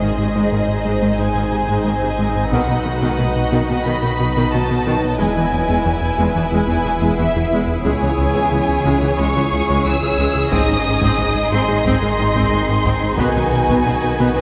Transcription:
Already playing: detuned saw bass G#1, synth drone G#3 C4 D#4 D#5, viola section D#4, violin section G#4 C5 D#5
0.02 analog synth bass G#2, cello section G#2, viola section D#3
0.18 analog synth bass G#2, cello section G#2, viola section C3
0.35 cello section G#2, analog synth bass G#2, viola section G#3
0.52 analog synth bass G#2, cello section G#2, viola section D#3
0.68 analog synth bass G#2
0.85 analog synth bass G#2, cello section G#2, viola section G#3
1.02 cello section G#2, viola section D#3, analog synth bass G#3
1.18 cello section G#2, analog synth bass G#2, viola section G#3, violin section G#5
1.35 analog synth bass G#2, cello section G#2, viola section D#3
1.52 analog synth bass G#2, cello section G#2, viola section C3
1.68 analog synth bass G#2, cello section G#2, viola section G#3
1.85 analog synth bass G#2, cello section G#2, viola section D#3, violin section G#5
2.02 analog synth bass G#2, cello section G#2, viola section C3
2.19 cello section G#2, analog synth bass G#2, viola section G#3
2.36 analog synth bass G#2
2.51 detuned saw bass B1, cello section B2, analog synth bass B2, viola section D#3, synth drone F#3 B3, violin section F#4 B4 F#5, taiko
2.69 cello section B2, analog synth bass B2, viola section D#3
2.85 analog synth bass B2, cello section B2, viola section D#3
3.02 cello section B2, analog synth bass B2, viola section D#3
3.18 analog synth bass B2, cello section B2, viola section D#3
3.36 analog synth bass B2
3.52 cello section B2, analog synth bass B2, viola section D#3
3.68 cello section B2, viola section D#3, analog synth bass B3
3.84 cello section B2, analog synth bass B2, viola section D#3, violin section B5
4.01 cello section B2, analog synth bass B2, viola section D#3
4.18 cello section B2, analog synth bass B2, viola section D#3
4.35 cello section B2, analog synth bass B2, viola section D#3
4.51 cello section B2, analog synth bass B2, viola section D#3, violin section A5
4.69 cello section B2, analog synth bass B2, viola section D#3
4.85 cello section B2, analog synth bass B2, viola section D#3
5.04 analog synth bass B2
5.17 detuned saw bass E1, cello section E2, analog synth bass E2, synth drone E3 G#4 E5, viola section G#3 E4, violin section E4 G#5
5.36 cello section E2, analog synth bass E2, viola section E3
5.52 cello section E2, analog synth bass E2, viola section E3
5.69 cello section E2, analog synth bass E2, viola section G#3
5.85 cello section E2, analog synth bass E2, viola section E3
6.02 analog synth bass E2
6.18 cello section E2, analog synth bass E2, viola section G#3
6.35 cello section E2, analog synth bass E3, viola section E3
6.52 cello section E2, analog synth bass E2, viola section G#3, violin section G#5
6.68 analog synth bass E2, cello section E2, viola section E3
6.84 cello section E2, analog synth bass E2, viola section E3
7.01 cello section E2, analog synth bass E2, viola section G#3
7.18 cello section E2, analog synth bass E2, viola section E3, violin section E5
7.34 cello section E2, analog synth bass E2, viola section E3
7.52 cello section E2, analog synth bass E2, viola section G#3
7.68 analog synth bass E2
7.85 analog synth bass C#2, cello section C#2, detuned saw bass C#2, viola section G#3, synth drone C#4 C#5, violin section G#4 C#5 G#5, taiko
8.02 analog synth bass C#2, cello section C#2, viola section E3
8.18 analog synth bass C#2, cello section C#2, viola section C#3
8.35 analog synth bass C#2, cello section C#2, viola section G#3
8.51 cello section C#2, analog synth bass C#2, viola section E3
8.69 analog synth bass C#2
8.85 cello section C#2, analog synth bass C#2, viola section G#3, taiko
9.02 cello section C#2, analog synth bass C#3, viola section E3
9.18 cello section C#2, analog synth bass C#2, viola section G#3, violin section C#6
9.35 cello section C#2, analog synth bass C#2, viola section E3
9.52 cello section C#2, analog synth bass C#2, viola section C#3
9.68 cello section C#2, analog synth bass C#2, viola section G#3
9.85 analog synth bass C#2, cello section C#2, viola section E3, violin section E6
10.02 cello section C#2, analog synth bass C#2, viola section C#3
10.18 analog synth bass C#2, cello section C#2, viola section G#3
10.35 analog synth bass C#2
10.51 detuned saw bass G#1, analog synth bass G#2, cello section G#2, synth drone D#3 C4 G#4 D#5, viola section C4 D#4, violin section D#5 D#6, taiko
10.68 analog synth bass G#2, cello section G#2, viola section G#3
10.85 analog synth bass G#2, cello section G#2, viola section D#3
11.01 analog synth bass G#2, cello section G#2, viola section C4, taiko
11.18 analog synth bass G#2, cello section G#2, viola section G#3
11.35 analog synth bass G#2
11.52 analog synth bass G#2, cello section G#2, viola section C4, violin section C6
11.68 cello section G#2, analog synth bass G#3, viola section G#3
11.85 analog synth bass G#2, cello section G#2, viola section C4, violin section C6, taiko
12.02 analog synth bass G#2, cello section G#2, viola section G#3
12.19 analog synth bass G#2, cello section G#2, viola section D#3
12.34 analog synth bass G#2, cello section G#2, viola section C4, taiko
12.52 cello section G#2, analog synth bass G#2, viola section G#3
12.69 analog synth bass G#2, cello section G#2, viola section D#3
12.85 cello section G#2, analog synth bass G#2, viola section C4, taiko
13.03 analog synth bass G#2
13.18 detuned saw bass B1, cello section B2, analog synth bass B2, synth drone B3 F#4 B4, viola section B3, violin section F#4 B4 G#5, taiko
13.35 cello section B2, analog synth bass B2, viola section F#3
13.52 cello section B2, analog synth bass B2, viola section D#3
13.68 cello section B2, analog synth bass B2, viola section B3, taiko
13.85 cello section B2, analog synth bass B2, viola section F#3
14.04 analog synth bass B2
14.18 cello section B2, analog synth bass B2, viola section B3
14.35 cello section B2, viola section F#3, analog synth bass B3

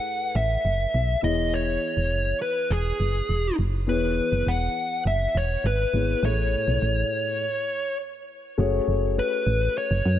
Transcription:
Already playing: grand piano A3 E4 G#4 B4, lead electric guitar F#5
0.35 fm bass A1, lead electric guitar E5
0.65 fm bass F#1
0.94 fm bass B1
1.22 fm bass E1, grand piano E3 B3 E4 G#4 C#5, lead electric guitar D#5
1.54 lead electric guitar C#5
1.97 fm bass E1
2.12 fm bass F#1
2.42 lead electric guitar B4
2.71 fm bass E1, lead electric guitar G#4
3.00 fm bass F#1
3.29 fm bass E1
3.59 fm bass F#1
3.87 fm bass E1, grand piano E3 B3 E4 G#4 C#5, lead electric guitar B4
4.32 fm bass F#1
4.47 fm bass E1, lead electric guitar F#5
5.06 fm bass F#1, lead electric guitar E5
5.35 fm bass E1, lead electric guitar C#5
5.64 fm bass G#1, lead electric guitar B4
5.94 fm bass G#1, grand piano B3 E4 G#4 C#5
6.22 fm bass A1, grand piano A2 A3 E4 G#4 C#5, lead electric guitar C#5
6.68 fm bass B1
6.82 fm bass A1
8.58 fm bass F#1, grand piano A3 C#4 F#4 G#4 C#5
8.88 fm bass F#1
9.19 lead electric guitar B4
9.47 fm bass A1
9.78 lead electric guitar C#5
9.91 fm bass F#1
10.06 fm bass F#2

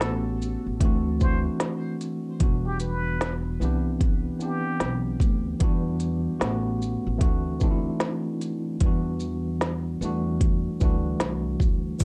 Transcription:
Already playing: muted trumpet A4
0.01 upright bass A1, tine electric piano A3 B3 C4 F#4, snare, closed hi-hat
0.05 tine electric piano G4
0.10 tine electric piano C#4
0.42 shaker
0.66 upright bass A1
0.80 upright bass D2, tine electric piano E3 A3 C4 D4, kick, closed hi-hat
0.85 tine electric piano F#4
1.20 tine electric piano E3 A3 C4 D4, muted trumpet C5, kick, shaker
1.25 tine electric piano F#4
1.60 snare, closed hi-hat
2.01 closed hi-hat, shaker
2.39 upright bass E1, tine electric piano E3 G3 B3 D4, kick, closed hi-hat
2.43 tine electric piano F#4
2.67 muted trumpet G4
2.80 muted trumpet B4, closed hi-hat, shaker
3.21 snare, closed hi-hat
3.60 upright bass C2, tine electric piano E3 B3 C4 D4, shaker
3.65 tine electric piano G4
4.01 kick, closed hi-hat
4.39 tine electric piano E3 B3 C4 D4, muted trumpet G4, shaker
4.43 tine electric piano G4
4.80 upright bass B1, snare, closed hi-hat
5.20 upright bass D2, kick, closed hi-hat, shaker
5.60 upright bass E2, tine electric piano E3 G3 B3 D4, kick, closed hi-hat
5.64 tine electric piano F#4
6.00 closed hi-hat, shaker
6.40 upright bass A1, tine electric piano A3 B3 C#4 F#4, snare, closed hi-hat
6.44 tine electric piano G4
6.82 shaker
7.07 upright bass A1
7.18 upright bass D2, tine electric piano E3 A3 C4 D4, kick, closed hi-hat
7.22 tine electric piano F#4
7.60 tine electric piano E3 A3 C4 D4, kick, shaker
7.64 tine electric piano D#4
7.71 tine electric piano E4
8.00 snare, closed hi-hat
8.41 closed hi-hat, shaker
8.80 upright bass E2, tine electric piano E3 G3 B3, kick, closed hi-hat
8.85 tine electric piano D4 F#4
9.20 shaker
9.61 snare, closed hi-hat
10.01 upright bass E2, tine electric piano E3 G3 A3 D4, shaker
10.05 tine electric piano F#4
10.41 kick, closed hi-hat
10.80 upright bass D2, tine electric piano E3 G3 A3 D4, kick, shaker
10.85 tine electric piano F#4
11.20 upright bass C2, snare, closed hi-hat
11.60 upright bass D2, kick, shaker
11.99 upright bass E1, tine electric piano E3 G3, kick, closed hi-hat, shaker

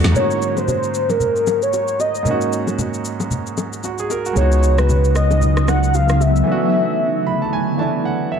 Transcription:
Already playing: ambient pad D3 F#3 A3 E4, grand piano A3 B3 D4 F#4
0.04 log drum bass E2, snare, shaker
0.12 grand piano G#2 A#3 C#4, soft synth lead C#5, low conga, shaker
0.18 grand piano D#4 F#4
0.31 shaker
0.42 shaker
0.57 soft synth lead C5, low bongo, shaker
0.68 high bongo, low conga, shaker
0.83 shaker
0.94 shaker
1.10 soft synth lead A#4, low bongo, shaker
1.20 low conga, shaker
1.36 shaker
1.47 low bongo, shaker
1.62 soft synth lead C#5, shaker
1.73 high bongo, shaker
1.88 shaker
2.00 soft synth lead D#5, high bongo, shaker
2.15 shaker
2.23 grand piano G#2 A#3 C#4, low conga, shaker
2.29 grand piano D#4 F#4
2.41 shaker
2.53 shaker
2.67 low bongo, shaker
2.79 high bongo, low conga, shaker
2.94 shaker
3.05 shaker
3.20 low bongo, shaker
3.31 low conga, shaker
3.47 shaker
3.58 low bongo, shaker
3.73 shaker
3.84 grand piano F#4, high bongo, shaker
3.98 grand piano G#4, shaker
4.10 grand piano A#4, high bongo, shaker
4.26 grand piano F#4, shaker
4.33 analog synth bass C#2, ambient pad C#3 F#3 B3 D#4, grand piano G#3 B3, soft synth lead C#5, low conga, shaker
4.38 grand piano D#4 F#4
4.52 shaker
4.63 shaker
4.78 soft synth lead B4, cross-stick, low bongo, shaker
4.89 high bongo, low conga, shaker
5.04 shaker
5.16 soft synth lead D#5, cross-stick, shaker
5.31 low bongo, shaker
5.41 low conga, shaker
5.57 cross-stick, shaker
5.68 soft synth lead F#5, cross-stick, low bongo, shaker
5.83 shaker
5.94 soft synth lead F5, high bongo, shaker
6.09 cross-stick, shaker
6.21 soft synth lead E5, high bongo, shaker
6.36 shaker
6.44 ambient pad D3 F#3 A3 E4, grand piano E3 A3 B3
6.50 grand piano D4 F#4
7.27 grand piano B5
7.42 grand piano A5
7.53 grand piano G#5
7.77 grand piano E3 A3 B3 D4 A5
7.81 grand piano E4
8.05 grand piano F#5
8.32 grand piano E5

